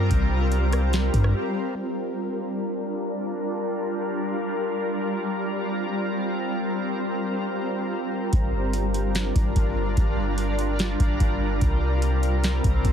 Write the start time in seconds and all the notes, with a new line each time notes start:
Already playing: G3 C4 F4 A#4
0.11 C2, kick, closed hi-hat
0.52 closed hi-hat
0.73 cross-stick, closed hi-hat
0.93 snare, closed hi-hat
1.14 G2, kick, closed hi-hat
1.24 cross-stick
1.76 G3 D4 F4 A#4
5.04 C4
8.33 G1 G3 D4 F4 A#4, kick, closed hi-hat
8.73 closed hi-hat
8.94 closed hi-hat
9.15 snare, closed hi-hat
9.36 G1, kick, closed hi-hat
9.56 G1, kick, closed hi-hat
9.97 G1, kick, closed hi-hat
10.38 closed hi-hat
10.59 closed hi-hat
10.79 snare, closed hi-hat
11.00 G1, kick, closed hi-hat
11.20 G1, kick, closed hi-hat
11.61 C2 C4 F4, kick, closed hi-hat
12.02 closed hi-hat
12.23 closed hi-hat
12.44 snare, closed hi-hat
12.64 C2, kick, closed hi-hat
12.85 C2, kick, closed hi-hat